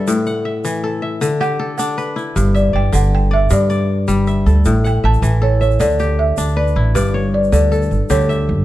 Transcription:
0.00 0.12 G2 medium
0.00 0.12 D3 medium
0.00 0.12 G3 medium
0.00 0.83 A4 medium
0.00 0.27 C#5 medium
0.00 0.42 D5 medium
0.00 0.45 E5 medium
0.07 1.27 A2 medium
0.07 shaker medium
0.26 1.23 F#5 medium
0.26 shaker soft
0.45 1.02 E5 medium
0.65 1.27 E3 medium
0.65 shaker medium
0.74 shaker soft
0.84 1.59 A4 medium
1.02 2.05 E5 medium
1.21 2.41 D3 medium
1.21 shaker medium
1.40 2.82 G4 medium
1.40 1.77 F#5 loud
1.40 shaker soft
1.59 2.91 A4 medium
1.78 3.47 D4 medium
1.78 2.14 F#5 medium
1.78 shaker medium
1.98 3.21 B4 medium
1.98 shaker soft
2.16 3.73 E4 medium
2.16 shaker soft
2.36 2.71 G1 loud
2.36 3.49 G2 medium
2.36 shaker medium
2.54 2.75 D5 medium
2.54 3.58 E5 medium
2.54 shaker soft
2.73 2.92 G1 medium
2.73 3.30 D5 medium
2.73 2.95 G5 loud
2.92 3.47 G1 loud
2.92 4.70 D3 medium
2.92 3.14 F#5 loud
2.92 shaker medium
3.03 shaker soft
3.15 3.33 G5 loud
3.31 3.69 D5 medium
3.31 3.50 E5 medium
3.50 4.70 G2 medium
3.50 4.04 G2 medium
3.50 4.43 D5 medium
3.50 shaker medium
3.70 4.80 D5 medium
3.70 shaker soft
4.08 4.43 G1 medium
4.08 4.70 G3 medium
4.08 shaker medium
4.27 5.03 E5 medium
4.27 shaker soft
4.46 4.64 D2 medium
4.46 5.41 A4 medium
4.46 shaker soft
4.65 5.01 A1 medium
4.65 5.85 A2 medium
4.65 shaker medium
4.84 5.81 F#5 medium
4.84 5.03 G5 loud
4.84 shaker soft
5.03 5.21 A1 medium
5.03 5.60 E5 medium
5.03 5.44 A5 loud
5.14 shaker soft
5.22 5.76 A1 loud
5.22 5.85 E3 medium
5.22 shaker medium
5.42 6.73 A4 medium
5.42 5.60 C#5 medium
5.61 5.79 C#5 medium
5.61 6.64 E5 medium
5.61 shaker soft
5.71 shaker soft
5.80 6.33 D2 medium
5.80 7.00 D3 medium
5.80 5.98 D5 medium
5.80 shaker medium
5.99 7.41 G4 medium
5.99 shaker soft
6.19 6.58 E5 medium
6.37 6.73 D2 medium
6.37 7.20 D4 medium
6.37 shaker medium
6.48 shaker soft
6.57 7.79 B4 medium
6.57 6.74 D5 medium
6.67 shaker soft
6.76 6.93 A1 medium
6.76 8.33 E4 medium
6.95 7.49 G1 medium
6.95 8.65 G2 medium
6.95 7.34 B4 medium
6.95 8.06 D5 medium
6.95 shaker medium
7.14 8.16 C#5 medium
7.34 7.52 D5 medium
7.44 shaker soft
7.52 7.88 D2 medium
7.52 8.09 D3 medium
7.52 8.12 D5 medium
7.52 shaker medium
7.72 8.65 A4 medium
7.72 shaker soft
7.82 shaker soft
7.91 8.00 G1 medium
7.91 shaker soft
8.10 8.50 D2 loud
8.10 8.65 D3 medium
8.10 8.65 G4 medium
8.10 8.46 C#5 medium
8.10 shaker medium
8.20 shaker soft
8.29 8.65 E5 medium
8.29 shaker soft
8.49 8.65 G1 medium

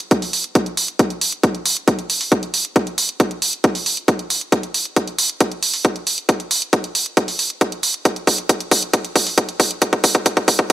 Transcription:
0.00 closed hi-hat soft
0.11 kick loud
0.11 closed hi-hat medium
0.22 open hi-hat medium
0.33 open hi-hat loud
0.44 closed hi-hat soft
0.55 kick loud
0.55 closed hi-hat medium
0.66 closed hi-hat soft
0.77 open hi-hat loud
0.88 closed hi-hat soft
0.99 kick loud
0.99 closed hi-hat medium
1.10 closed hi-hat soft
1.21 open hi-hat loud
1.32 closed hi-hat soft
1.43 kick loud
1.43 closed hi-hat medium
1.55 closed hi-hat soft
1.66 open hi-hat loud
1.77 closed hi-hat soft
1.88 kick loud
1.88 closed hi-hat medium
1.99 closed hi-hat soft
2.10 open hi-hat loud
2.21 open hi-hat medium
2.32 kick loud
2.32 closed hi-hat medium
2.43 closed hi-hat soft
2.54 open hi-hat loud
2.65 closed hi-hat soft
2.76 kick loud
2.76 closed hi-hat medium
2.87 closed hi-hat soft
2.98 open hi-hat loud
3.09 closed hi-hat soft
3.20 kick loud
3.20 closed hi-hat medium
3.31 closed hi-hat soft
3.42 open hi-hat loud
3.53 closed hi-hat soft
3.64 kick loud
3.64 closed hi-hat medium
3.75 open hi-hat medium
3.86 open hi-hat loud
3.97 closed hi-hat soft
4.08 kick loud
4.08 closed hi-hat medium
4.19 closed hi-hat soft
4.30 open hi-hat loud
4.41 closed hi-hat soft
4.52 kick loud
4.52 closed hi-hat medium
4.63 closed hi-hat soft
4.74 open hi-hat loud
4.85 closed hi-hat soft
4.96 kick loud
4.96 closed hi-hat medium
5.08 closed hi-hat soft
5.18 open hi-hat loud
5.29 closed hi-hat soft
5.41 kick loud
5.41 closed hi-hat medium
5.52 closed hi-hat soft
5.63 open hi-hat loud
5.74 open hi-hat medium
5.85 kick loud
5.85 closed hi-hat medium
5.96 closed hi-hat soft
6.07 open hi-hat loud
6.18 closed hi-hat soft
6.29 kick loud
6.29 closed hi-hat medium
6.40 closed hi-hat soft
6.51 open hi-hat loud
6.62 closed hi-hat soft
6.73 kick loud
6.73 closed hi-hat medium
6.84 closed hi-hat soft
6.95 open hi-hat loud
7.06 closed hi-hat soft
7.17 kick loud
7.17 closed hi-hat medium
7.28 open hi-hat medium
7.39 open hi-hat medium
7.50 closed hi-hat soft
7.61 kick loud
7.61 closed hi-hat medium
7.72 closed hi-hat soft
7.83 open hi-hat loud
7.94 closed hi-hat soft
8.05 kick loud
8.05 closed hi-hat medium
8.16 closed hi-hat soft
8.27 kick loud
8.27 open hi-hat loud
8.38 closed hi-hat soft
8.49 kick loud
8.49 closed hi-hat medium
8.60 closed hi-hat soft
8.71 kick loud
8.71 open hi-hat loud
8.83 closed hi-hat soft
8.94 kick loud
8.94 closed hi-hat medium
9.05 closed hi-hat soft
9.16 kick loud
9.16 open hi-hat loud
9.27 open hi-hat medium
9.38 kick loud
9.38 closed hi-hat medium
9.49 closed hi-hat soft
9.60 kick loud
9.60 open hi-hat loud
9.71 closed hi-hat soft
9.82 kick loud
9.82 closed hi-hat loud
9.93 kick medium
9.93 closed hi-hat soft
10.04 kick loud
10.04 open hi-hat loud
10.15 kick medium
10.15 closed hi-hat soft
10.26 kick loud
10.26 closed hi-hat loud
10.37 kick medium
10.37 closed hi-hat soft
10.48 kick loud
10.48 open hi-hat loud
10.59 kick loud
10.59 closed hi-hat soft

